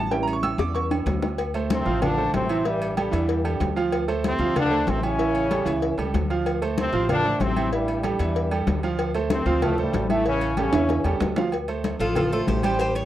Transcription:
Already playing: A1 A5
0.11 G3 C#4 E4 G5, cowbell, high conga
0.23 A#5
0.27 high conga, low agogo
0.33 C#6
0.43 E6, cowbell, high conga, low timbale, low agogo
0.58 E2 D6, cowbell, high bongo, low agogo
0.74 C#6, cowbell, high conga
0.90 low bongo, high conga, high timbale, low agogo
1.06 D2, cowbell, low bongo, high conga, low timbale, low agogo
1.22 low bongo, low timbale, low agogo
1.38 cowbell, high conga, low agogo
1.54 A3 A4 C5, high conga, low agogo
1.70 C3 C4, cowbell, high conga, low timbale, low agogo
1.85 A1 F3 F4 F5, high conga
2.01 D3 F3 D4 F4 F5, cowbell, high conga, low conga, low agogo
2.18 A3 A4 C5, high conga
2.34 A1 C3 C4, cowbell, high conga, low timbale, low agogo
2.49 E3 E4 E5, low agogo
2.65 G2 E3 G3 E4 E5, cowbell, high conga
2.82 high conga, low agogo
2.97 G2 G3 G4 A4, cowbell, high conga, low timbale, low agogo
3.11 E2 E3 E4 E5, cowbell, low agogo
3.29 cowbell, high conga
3.44 G3 G4 A4, high conga, low agogo
3.60 D2, cowbell, high conga, low timbale, low agogo
3.76 F3 F4 F5, high conga, low agogo
3.92 cowbell, high conga, low agogo
4.08 A3 A4 C5, high conga, low agogo
4.24 C3 C4, cowbell, high conga, low timbale, low agogo
4.39 D2 F3 F4 F5, high conga
4.55 D3 F3 D4 F4 F5, cowbell, high conga, low conga, low agogo
4.71 A3 A4 C5, high conga
4.87 A1 C3 C4, cowbell, high conga, low timbale, low agogo
5.02 C#3 E3 C#4 E4 E5, low agogo
5.18 E3 E4 E5, cowbell, high conga
5.35 high conga, low agogo
5.51 G3 G4 A4, cowbell, high conga, low timbale, low agogo
5.65 C#2 E3 E4 E5, cowbell, low agogo
5.82 cowbell, high conga
5.97 C#2 G3 G4 A4, high conga, low agogo
6.14 D2, cowbell, high conga, low timbale, low agogo
6.30 F3 F4 F5, low agogo
6.46 cowbell, high conga, low agogo
6.62 A3 A4 C5, high conga, low agogo
6.78 C3 C4, cowbell, high conga, low timbale, low agogo
6.92 A1 F3 F4 F5, high conga
7.09 D3 F3 D4 F4 F5, cowbell, high conga, low conga, low agogo
7.24 A3 A4 C5, high conga
7.40 A1 C3 C4, cowbell, high conga, low timbale, low agogo
7.56 E3 E4 E5, high conga, low agogo
7.72 G2 E3 G3 E4 E5, cowbell, high conga
7.88 high conga, low agogo
8.03 G2 G3 G4 A4, cowbell, high conga, low timbale, low agogo
8.19 E2 E3 E4 E5, cowbell, low agogo
8.36 cowbell, high conga
8.51 G3 G4 A4, high conga, low agogo
8.67 D2, cowbell, high conga, low timbale, low agogo
8.83 F3 F4 F5, high conga, low agogo
8.99 cowbell, high conga, low agogo
9.15 A3 A4 C5, high conga, low agogo
9.30 C3 C4, cowbell, high conga, low timbale, low agogo
9.46 D2 F3 F4 F5, high conga
9.62 A2 F3 A3 F4 F5, cowbell, high conga, low conga, low agogo
9.78 G2 G3 A3 A4 C5, high conga, low conga
9.93 A1, cowbell, high conga, low timbale, low agogo
10.10 A2 E3 A3 E4 E5, high conga, low agogo
10.26 C#3 E3 C#4 E4 E5, cowbell, high conga
10.41 high conga, low agogo
10.57 C#3 G3 C#4 G4 A4, cowbell, high conga, low timbale, low agogo
10.72 E2 E3 E4 E5, cowbell, high timbale, low agogo
10.89 cowbell, high bongo, high conga, high timbale
11.04 E2 G3 G4 A4, high bongo, high conga, low agogo
11.20 D2, cowbell, low bongo, high conga, low timbale, low agogo
11.36 F3 F4 F5, low bongo, high conga, low timbale, low agogo
11.52 cowbell, high conga, low agogo
11.68 A3 A4 C5, high conga, low agogo
11.84 cowbell, high conga, low timbale, low agogo
11.99 A1 F3 F4 A4 F5, high conga
12.15 F3 F4 A4 F5, cowbell, high conga, low conga, low agogo
12.32 A3 F4 A4 C5, high conga
12.47 A1 G4 C5, cowbell, high conga, low timbale, low agogo
12.63 G3 G4 C5 G5, high conga, low agogo
12.79 G3 G4 C5 G5, cowbell, high conga
12.95 C#5, high conga, low agogo

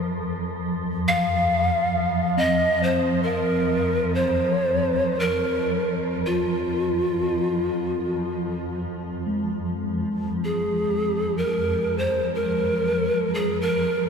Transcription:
Already playing: F2 F3
1.08 F5
2.37 C4 D#5
2.83 C5
3.23 A#4
4.15 C5
5.20 A#4
6.26 F4
9.19 F2 F3
9.27 G#3
10.45 G#4
11.38 A#4
11.98 C5
12.35 A#4
13.34 G#4
13.61 A#4

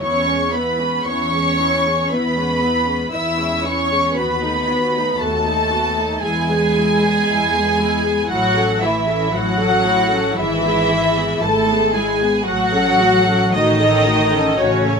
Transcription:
0.00 E2 B3 C#4 E4 C#5 C#6
0.27 G#3 C#4
0.53 B3 E4 B4 B5
0.80 G#3 C#4
1.06 E2 B3 C#4 E4 C#5 C#6
1.33 G#3 C#4
1.59 B3 E4
1.85 G#3 C#4
2.12 E2 B3 E4 B4 B5
2.37 G#3 C#4
2.63 B3 E4
2.88 G#3 C#4
3.13 E2 B3 E4 E5 E6
3.39 G#3 C#4
3.64 B3 C#4 E4 C#5 C#6
3.91 G#3 C#4
4.16 D#2 B3 F#4 B4 B5
4.43 A3 D#4
4.69 B3 F#4
4.95 A3 D#4
5.20 D#2 A3 B3 F#4 A4 A5
5.46 A3 D#4
5.72 B3 F#4
5.97 A3 D#4
6.23 E2 G#3 E4 G#4 G#5
6.50 B3 G#4
6.76 G#3 E4
7.03 B3 G#4
7.27 E2 G#3 E4
7.54 B3 G#4
7.80 G#3 E4
8.05 B3 G#4
8.29 A1 F#3 A3 E4 F#4 F#5
8.55 C#4 A4
8.81 E3 A3 E4 E5
9.08 C#4 A4
9.33 A1 F#3 A3 E4 F#4 F#5
9.59 C#4 A4
9.85 A3 E4
10.12 C#4 A4
10.37 G#1 E3 G#3 E4 E5
10.64 B3 G#4
10.90 G#3 E4
11.16 B3 G#4
11.41 G#1 G#3 A3 E4 A4 A5
11.69 B3 G#4
11.94 G#3 E4 G#4 G#5
12.20 B3 G#4
12.46 A1 F#3 A3 F#4 F#5
12.74 C#4 A4
13.00 A3 F#4
13.27 C#4 A4
13.53 A1 D#3 A3 D#4 F#4 D#5
13.80 C#4 A4
14.06 A3 F#4
14.33 C#4 A4
14.59 A1 C#3 A3 C#4 F#4 C#5
14.86 C#4 A4

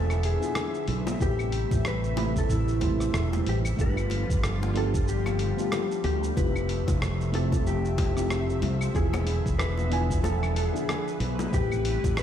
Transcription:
Already playing: E1 D3 F3 B3 D4 E4 F4 G#4 A4 E5 G#5
0.10 cross-stick, cabasa, claves
0.23 G#4, open hi-hat
0.40 B3 D4 E4 F4 G#4, cabasa
0.55 cross-stick, high bongo, cabasa
0.74 cabasa
0.88 B1, open hi-hat
1.07 high bongo, cabasa
1.19 A1 C3 G3 A3 C4 E4 G4 B4, kick, cabasa
1.39 cabasa, claves
1.52 open hi-hat
1.71 A1, kick, high bongo, cabasa
1.85 B4, cross-stick, cabasa
2.04 cabasa
2.16 A3 C4 E4 G4 B4, open hi-hat, high bongo
2.36 A4, kick, cabasa
2.50 A1 E4, kick, cabasa
2.68 cabasa
2.80 A3 C4 E4 G4 C5, kick, open hi-hat, high bongo
3.00 cross-stick, cabasa
3.14 E1, cross-stick, cabasa
3.33 high bongo, cabasa
3.46 A1 G4, open hi-hat
3.65 cabasa, claves
3.77 G1 D3 F3 A3 B3 D4 F4 G4, kick, cabasa
3.81 B4
3.97 cabasa, claves
4.10 open hi-hat, high bongo
4.29 G1, kick, cabasa
4.43 cross-stick, cabasa
4.62 high bongo, cabasa
4.73 A3 B3 D4 F4 G4, open hi-hat
4.77 A4
4.94 kick, cabasa
5.08 G4, cabasa
5.26 cross-stick, high bongo, cabasa, claves
5.39 open hi-hat
5.57 A3 B3 D4 F4 G4, cabasa
5.72 cross-stick, high bongo, cabasa
5.91 cabasa
6.04 D2 G4, open hi-hat
6.24 cabasa
6.35 F1 C3 F3 A3 C4 E4 F4 G4 B4 E5, kick, high bongo, cabasa
6.56 cabasa, claves
6.69 open hi-hat
6.87 F1, kick, high bongo, cabasa
7.02 cross-stick, cabasa
7.21 cabasa
7.32 A3 C4 E4 F4 G4 A4, open hi-hat
7.52 kick, high bongo, cabasa
7.65 F1 G4, cabasa
7.85 cabasa
7.98 kick, open hi-hat, high bongo
8.15 A3 C4 E4 F4 G4, cross-stick, cabasa
8.30 cross-stick, cabasa
8.50 cabasa
8.62 C2, open hi-hat, high bongo
8.81 cabasa, claves
8.94 E1 D3 B3 D4 E4 F4 G#4 B4, kick, cabasa
9.13 high bongo, cabasa, claves
9.27 open hi-hat
9.46 E1, kick, cabasa
9.59 B4, cross-stick, cabasa
9.77 high bongo, cabasa
9.90 B3 D4 E4 F4 G#5, open hi-hat
10.10 kick, cabasa
10.24 A4, high bongo, cabasa
10.43 cross-stick, cabasa, claves
10.56 G#4, open hi-hat
10.73 B3 D4 E4 F4 G#4, cabasa
10.89 cross-stick, high bongo, cabasa
11.08 cabasa
11.20 B1, open hi-hat
11.39 high bongo, cabasa
11.51 A1 C3 G3 A3 C4 E4 G4 B4, kick, cabasa
11.72 cabasa, claves
11.85 open hi-hat
12.04 A1, kick, high bongo, cabasa
12.17 B4, cross-stick, cabasa

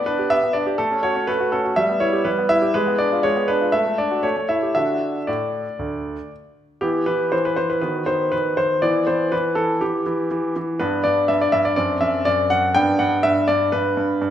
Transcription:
Already playing: B3 D5
0.06 D4 B4
0.19 G4
0.30 B3 E5
0.43 B3
0.53 D4 D5
0.67 G4
0.78 A3 A4
0.91 C#4
1.03 F#4 C#5
1.16 C#4
1.27 A3 B4
1.40 F#4
1.52 C#4 A4
1.65 F#4
1.76 G3 E5
1.89 B3
2.00 E4 C#5
2.13 G4
2.25 G3 B4
2.38 B3
2.49 E4 E5
2.62 G4
2.74 G#3 B4
2.87 B3
2.98 D4 D5
3.12 F4
3.23 G#3 C#5
3.36 B3
3.48 D4 B4
3.61 F4
3.72 A3 E5
3.86 A3
3.98 D4 D5
4.11 F#4
4.23 A3 C#5
4.37 A3
4.49 E4 E5
4.63 G4
4.75 D3 D4 F#4 E5
5.27 A2 D5
5.79 D2
6.81 E3 B3 E4 G4
7.06 E3 B4
7.32 E3 C5
7.45 B4
7.56 E3 C5
7.70 B4
7.81 D#3 B3 F#4 B4
8.06 D#3 C5
8.32 D#3 B4
8.57 D#3 C5
8.82 E3 B3 E4 D5
9.07 E3 C5
9.32 E3 B4
9.55 E3 A4
9.81 E3 G4
10.06 E3
10.31 E3
10.56 E3
10.80 G2 B3 D4 B4
11.04 G2 D5
11.28 G2 E5
11.41 D5
11.52 G2 E5
11.65 D5
11.76 F#2 C4 D4 D5
12.01 F#2 E5
12.25 F#2 D5
12.50 F#2 F#5
12.75 G2 B3 D4 G5
12.99 G2 F#5
13.23 G2 E5
13.48 G2 D5
13.72 G2 B4
13.97 G2
14.22 G2

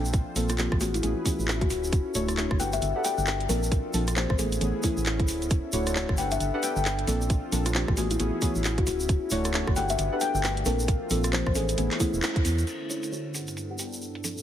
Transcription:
Already playing: A#1 D4 F4 A4 C5
0.05 shaker
0.13 kick, closed hi-hat, shaker
0.36 A#1 F3 A#3 C4 D4 A4, open hi-hat, shaker
0.49 F4, cross-stick, closed hi-hat, shaker
0.58 F3 A#3 C4 D4 F4 G4, clap, shaker
0.72 A1, kick, cross-stick
0.81 E3 A3 B3 C#4 E4 F#4 G#4 B4, open hi-hat, shaker
0.94 E4, closed hi-hat, shaker
1.03 A1 E3 A3 B3 C#4 E4 G#4, closed hi-hat, shaker
1.25 E3 A3 B3 C#4 G#4, kick, open hi-hat, shaker
1.39 A1, shaker
1.48 clap, shaker
1.61 F#4, kick, closed hi-hat
1.70 D1 F#4, open hi-hat, shaker
1.84 shaker
1.92 A4, kick, closed hi-hat, shaker
2.15 D1 A3 D4 E4 F#4 C#5, open hi-hat, shaker
2.28 cross-stick, closed hi-hat, shaker
2.37 A3 D4 E4 F#4 C#5, clap, shaker
2.51 G1, kick, cross-stick
2.60 B3 D4 G4 A4 B4 F#5 G5, open hi-hat, shaker
2.72 E5, closed hi-hat, shaker
2.82 G1, closed hi-hat, shaker
2.96 D4 G4 A4 B4 F#5
3.04 D4 G4 A4 B4 G5, open hi-hat, shaker
3.18 G1 G5, shaker
3.26 clap, shaker
3.40 closed hi-hat
3.49 A#1 F3 A#3 C4 D4 F4 A4 A#4, open hi-hat, shaker
3.63 shaker
3.71 kick, closed hi-hat, shaker
3.94 A#1 F3 A#3 C4 D4 A4, open hi-hat, shaker
4.08 cross-stick, closed hi-hat, shaker
4.16 F3 A#3 C4 D4 G4 C5, clap, shaker
4.30 A1 C5, kick, cross-stick
4.39 E3 A3 B3 C#4 E4 G#4 A4, open hi-hat, shaker
4.52 closed hi-hat, shaker
4.61 A1 E3 A3 B3 C#4 G#4, closed hi-hat, shaker
4.83 E3 A3 B3 C#4 E4 G#4, kick, open hi-hat, shaker
4.97 A1, shaker
5.06 clap, shaker
5.20 kick, closed hi-hat
5.28 D1, open hi-hat, shaker
5.42 closed hi-hat, shaker
5.50 A4, kick, closed hi-hat, shaker
5.73 D1 A3 D4 E4 F#4 C#5, open hi-hat, shaker
5.87 cross-stick, closed hi-hat, shaker
5.96 A3 D4 E4 F#4 C#5, clap, shaker
6.09 G1, kick, cross-stick
6.17 B3 D4 G4 A4 B4 F#5 G5, open hi-hat, shaker
6.31 E5, closed hi-hat, shaker
6.40 G1, closed hi-hat, shaker
6.54 D4 G4 A4 B4 F#5
6.63 D4 G4 A4 B4 G5, open hi-hat, shaker
6.76 G1 G5, shaker
6.85 clap, shaker
6.99 closed hi-hat
7.07 A#1 F3 A#3 C4 D4 F4 A4, open hi-hat, shaker
7.21 shaker
7.30 kick, closed hi-hat, shaker
7.52 A#1 F3 A#3 C4 D4 A4, open hi-hat, shaker
7.66 F4, cross-stick, closed hi-hat, shaker
7.75 F3 A#3 C4 D4 F4 G4, clap, shaker
7.88 A1, kick, cross-stick
7.97 E3 A3 B3 C#4 E4 F#4 G#4, open hi-hat, shaker
8.11 E4, closed hi-hat, shaker
8.19 A1 E3 A3 B3 C#4 E4 G#4, closed hi-hat, shaker
8.42 E3 A3 B3 C#4 G#4, kick, open hi-hat, shaker
8.55 A1, shaker
8.64 clap, shaker
8.78 F#4, kick, closed hi-hat
8.87 D1 F#4, open hi-hat, shaker
9.00 shaker
9.09 A3 C#4, kick, closed hi-hat, shaker
9.30 D1 A3 D4 E4 F#4 C#5, open hi-hat, shaker
9.44 cross-stick, closed hi-hat, shaker
9.53 A3 D4 E4 F#4 C#5, clap, shaker
9.67 G1, kick, cross-stick
9.76 B3 D4 G4 A4 B4 F#5 G5, open hi-hat, shaker
9.89 E5, closed hi-hat, shaker
9.98 G1, closed hi-hat, shaker
10.12 D4 G4 A4 B4 F#5
10.21 D4 G4 A4 B4 G5, open hi-hat, shaker
10.35 G1 G5, shaker
10.43 clap, shaker
10.57 closed hi-hat
10.65 A#1 F3 A#3 C4 D4 F4 A4 A#4, open hi-hat, shaker
10.79 shaker
10.88 kick, closed hi-hat
11.10 A#1 F3 A#3 C4 D4 A4, open hi-hat, shaker
11.24 cross-stick, closed hi-hat, shaker
11.33 F3 A#3 C4 D4 G4 C5, clap, shaker
11.46 A1 C5, kick, cross-stick
11.55 E3 G#3 A3 B3 C#4 E4 G#4 A4, open hi-hat, shaker
11.69 closed hi-hat, shaker
11.78 A1 E3 A3 B3 C#4 G#4, closed hi-hat, shaker
11.91 clap, closed hi-hat
12.00 E3 A3 B3 C#4 E4 G#4, kick, open hi-hat, shaker
12.14 E1, shaker
12.22 clap, shaker
12.36 kick, closed hi-hat
12.45 E2, open hi-hat, shaker
12.58 closed hi-hat, shaker
12.67 D3 A3 C#4 E4, closed hi-hat, crash, shaker
12.90 A3 D4 E4 F#4 C#5, open hi-hat, shaker
13.03 closed hi-hat, shaker
13.12 A3 D4 E4 F#4 C#5, shaker
13.34 G2 B3 D4 G4 A4 B4 F#5, open hi-hat, shaker
13.47 closed hi-hat, shaker
13.57 closed hi-hat, shaker
13.70 D4 G4 A4 B4 F#5
13.79 D4 G4 A4 B4 G5, open hi-hat, shaker
13.93 shaker
14.02 shaker
14.15 closed hi-hat
14.24 A#2 F3 A#3 C4 D4 F4 A4, open hi-hat, shaker
14.37 shaker

